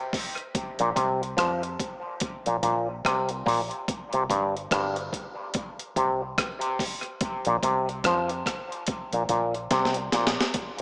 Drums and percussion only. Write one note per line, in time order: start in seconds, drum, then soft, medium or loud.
0.13 kick loud
0.13 open hi-hat medium
0.38 closed hi-hat soft
0.55 kick loud
0.55 closed hi-hat medium
0.79 closed hi-hat medium
0.96 kick medium
0.96 closed hi-hat medium
1.23 closed hi-hat soft
1.38 kick loud
1.38 cross-stick loud
1.38 closed hi-hat medium
1.63 closed hi-hat soft
1.80 kick medium
1.80 closed hi-hat medium
2.20 kick loud
2.20 closed hi-hat medium
2.46 closed hi-hat medium
2.63 kick medium
2.63 closed hi-hat medium
3.05 kick medium
3.05 cross-stick loud
3.05 closed hi-hat medium
3.29 closed hi-hat medium
3.46 kick medium
3.46 open hi-hat medium
3.71 closed hi-hat soft
3.88 kick loud
3.88 closed hi-hat medium
4.13 closed hi-hat medium
4.30 kick medium
4.30 closed hi-hat medium
4.57 closed hi-hat soft
4.71 kick loud
4.71 cross-stick loud
4.71 closed hi-hat medium
4.96 closed hi-hat soft
5.13 kick medium
5.13 closed hi-hat medium
5.54 kick loud
5.54 closed hi-hat medium
5.79 closed hi-hat medium
5.96 kick medium
5.96 closed hi-hat medium
6.38 kick loud
6.38 cross-stick medium
6.38 closed hi-hat medium
6.61 closed hi-hat medium
6.79 kick medium
6.79 open hi-hat medium
7.03 closed hi-hat soft
7.21 kick loud
7.21 closed hi-hat medium
7.45 closed hi-hat medium
7.63 kick medium
7.63 closed hi-hat medium
7.89 closed hi-hat soft
8.04 kick loud
8.04 cross-stick loud
8.04 closed hi-hat medium
8.29 closed hi-hat soft
8.46 kick medium
8.46 cross-stick medium
8.46 closed hi-hat medium
8.72 closed hi-hat soft
8.87 kick loud
8.87 closed hi-hat medium
9.13 closed hi-hat medium
9.29 kick medium
9.29 closed hi-hat medium
9.54 closed hi-hat soft
9.71 kick loud
9.71 snare medium
9.71 closed hi-hat medium
9.85 snare medium
9.94 closed hi-hat medium
10.12 snare medium
10.12 closed hi-hat medium
10.27 snare loud
10.41 snare medium
10.54 kick loud
10.54 closed hi-hat medium